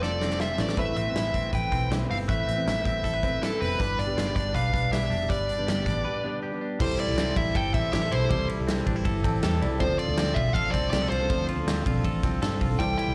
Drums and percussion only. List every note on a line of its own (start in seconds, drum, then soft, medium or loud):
0.03 snare soft
0.21 snare medium
0.30 snare medium
0.40 snare medium
0.58 snare loud
0.69 snare medium
0.77 kick loud
0.77 closed hi-hat medium
0.96 closed hi-hat medium
1.16 snare loud
1.16 closed hi-hat medium
1.34 kick medium
1.34 closed hi-hat medium
1.53 kick medium
1.53 closed hi-hat medium
1.72 kick medium
1.72 closed hi-hat medium
1.91 snare loud
1.91 closed hi-hat medium
2.11 open hi-hat medium
2.29 kick loud
2.29 closed hi-hat medium
2.48 closed hi-hat medium
2.68 snare loud
2.68 closed hi-hat medium
2.85 kick medium
2.85 closed hi-hat medium
3.04 kick medium
3.04 closed hi-hat medium
3.23 kick medium
3.23 closed hi-hat medium
3.43 snare medium
3.43 closed hi-hat medium
3.62 open hi-hat medium
3.80 kick loud
3.80 closed hi-hat medium
3.99 closed hi-hat medium
4.18 snare loud
4.18 closed hi-hat loud
4.36 kick medium
4.36 closed hi-hat medium
4.55 kick medium
4.55 closed hi-hat medium
4.74 kick medium
4.74 closed hi-hat medium
4.93 snare loud
4.93 closed hi-hat medium
5.12 open hi-hat medium
5.30 kick loud
5.30 closed hi-hat loud
5.49 closed hi-hat medium
5.68 snare loud
5.68 closed hi-hat loud
5.86 kick medium
5.86 closed hi-hat medium
6.80 kick loud
6.80 crash loud
6.99 ride medium
7.18 snare loud
7.18 ride medium
7.36 kick loud
7.36 ride medium
7.55 kick medium
7.55 ride medium
7.74 kick medium
7.74 snare soft
7.74 ride medium
7.93 snare loud
7.93 ride medium
8.12 ride medium
8.31 kick loud
8.31 ride medium
8.49 ride medium
8.69 snare loud
8.69 ride medium
8.87 kick medium
8.87 ride medium
9.05 kick medium
9.05 ride medium
9.24 kick medium
9.24 ride medium
9.43 snare loud
9.43 ride medium
9.62 ride medium
9.80 kick loud
9.80 ride medium
9.99 ride medium
10.18 snare loud
10.18 ride medium
10.36 kick medium
10.36 ride medium
10.55 kick medium
10.55 ride medium
10.74 kick loud
10.74 snare soft
10.74 ride medium
10.93 snare loud
10.93 ride medium
11.12 ride medium
11.30 kick loud
11.30 ride medium
11.48 ride medium
11.68 snare loud
11.68 ride medium
11.86 kick medium
11.86 ride medium
12.04 kick medium
12.04 ride medium
12.23 kick loud
12.23 snare soft
12.23 ride medium
12.42 snare loud
12.42 ride medium
12.61 kick medium
12.61 open hi-hat medium
12.61 ride medium
12.80 kick loud
12.80 hi-hat pedal medium
12.80 ride medium
12.99 ride medium